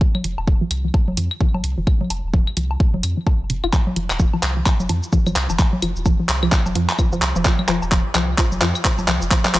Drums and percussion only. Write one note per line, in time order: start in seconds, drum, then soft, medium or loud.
0.01 kick loud
0.15 low conga medium
0.15 claves medium
0.24 closed hi-hat medium
0.38 low woodblock soft
0.48 kick loud
0.71 closed hi-hat medium
0.71 claves medium
0.94 kick loud
0.94 low woodblock soft
1.08 low conga medium
1.17 closed hi-hat loud
1.31 claves medium
1.41 kick loud
1.54 low conga medium
1.54 low woodblock soft
1.64 closed hi-hat medium
1.87 kick loud
1.87 claves medium
2.01 low conga medium
2.10 closed hi-hat medium
2.10 low woodblock soft
2.34 kick loud
2.47 claves medium
2.57 closed hi-hat loud
2.71 low woodblock soft
2.80 kick loud
2.94 low conga medium
3.03 closed hi-hat medium
3.03 claves medium
3.27 kick medium
3.27 low woodblock soft
3.50 closed hi-hat medium
3.64 claves medium
3.73 kick loud
3.73 clap soft
3.73 low woodblock soft
3.73 shaker medium
3.87 low conga medium
3.96 closed hi-hat medium
4.10 clap soft
4.10 claves medium
4.10 shaker soft
4.20 kick loud
4.20 shaker medium
4.34 low woodblock soft
4.43 clap medium
4.43 closed hi-hat medium
4.66 kick loud
4.66 clap medium
4.66 claves medium
4.66 shaker medium
4.80 low conga medium
4.80 shaker soft
4.89 closed hi-hat medium
4.89 low woodblock soft
5.03 shaker soft
5.13 kick loud
5.13 shaker medium
5.26 low conga medium
5.26 claves medium
5.26 shaker soft
5.36 clap medium
5.36 closed hi-hat medium
5.50 low woodblock soft
5.50 shaker soft
5.59 kick loud
5.59 clap medium
5.59 shaker medium
5.73 low conga medium
5.82 closed hi-hat medium
5.82 claves medium
5.96 shaker soft
6.06 kick loud
6.06 low woodblock soft
6.06 shaker medium
6.29 clap medium
6.29 closed hi-hat medium
6.43 claves medium
6.52 kick loud
6.52 clap medium
6.52 shaker medium
6.66 low conga medium
6.66 low woodblock soft
6.66 shaker soft
6.75 closed hi-hat medium
6.89 clap medium
6.89 shaker soft
6.99 kick medium
6.99 claves medium
6.99 shaker medium
7.12 shaker soft
7.22 clap medium
7.22 closed hi-hat medium
7.22 low woodblock soft
7.36 shaker soft
7.45 kick loud
7.45 clap medium
7.45 shaker medium
7.59 low conga medium
7.59 claves medium
7.68 clap medium
7.68 closed hi-hat medium
7.82 low woodblock soft
7.82 shaker soft
7.92 kick loud
7.92 clap medium
7.92 shaker medium
8.15 clap medium
8.15 closed hi-hat medium
8.15 claves medium
8.38 kick loud
8.38 clap medium
8.38 low woodblock soft
8.38 shaker medium
8.52 low conga medium
8.52 shaker soft
8.61 clap medium
8.61 closed hi-hat medium
8.75 claves medium
8.75 shaker soft
8.85 kick medium
8.85 clap medium
8.85 shaker medium
8.99 low conga medium
8.99 low woodblock soft
8.99 shaker soft
9.08 clap medium
9.08 closed hi-hat medium
9.22 shaker soft
9.31 kick loud
9.31 clap medium
9.31 claves medium
9.31 shaker medium
9.45 clap medium
9.45 low conga medium
9.45 shaker soft
9.55 clap medium
9.55 closed hi-hat medium
9.55 low woodblock soft